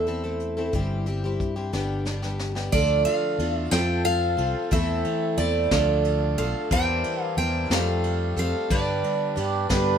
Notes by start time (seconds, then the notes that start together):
Already playing: E2 E5
0.06 A3 C4 E4 A4, closed hi-hat
0.24 A3 C4 E4 A4
0.40 closed hi-hat
0.57 A3 C4 E4 A4
0.73 G1 G2 E3 G3 C4 E4 G4, kick, closed hi-hat
1.06 G3 C4 E4 G4, closed hi-hat
1.24 G3 C4 E4 G4
1.40 G2, kick, closed hi-hat
1.56 G3 C4 E4 G4
1.73 G1 G2 D3 G3 B3 D4 G4, snare
2.05 G3 B3 D4 G4, snare
2.22 G3 B3 D4 G4, snare
2.39 snare
2.55 G3 B3 D4 G4, snare
2.72 D2 D3 F3 A3 D4 F4 A4 D5, kick, ride
3.05 F5, ride
3.39 E2 D4 F4 A4, ride
3.54 E5
3.71 F2 F3 C4 F4 A4 G5, snare, ride
4.05 F5, ride
4.37 C2 C4 F4 A4, ride
4.71 E2 E3 A3 C4 E4 A4 E5, kick, ride
5.04 ride
5.37 E2 A3 C4 E4 A4 D5, ride
5.68 D2 D3 A3 D4 F4 A4, kick, snare, ride
5.72 D3 F3
6.05 ride
6.37 B1 D4 F4 A4 F5, ride
6.71 E2 E3 G3 A#3 D4 E4 C5 G5, kick, ride
7.04 ride
7.23 F5
7.37 E2 G3 A#3 E4 C5 G5, ride
7.70 F2 F3 G3 A3 C4 F4 G4 A4 F5, snare, ride
8.04 ride
8.36 F2 C4 G4 A4 F5, ride
8.70 G2 D3 G3 B3 D4 B4 D5, kick, ride
9.04 ride
9.36 G2 G3 B3 D4 G4 B4, ride
9.70 G2 D3 G3 B3 D4 B4, kick, snare, ride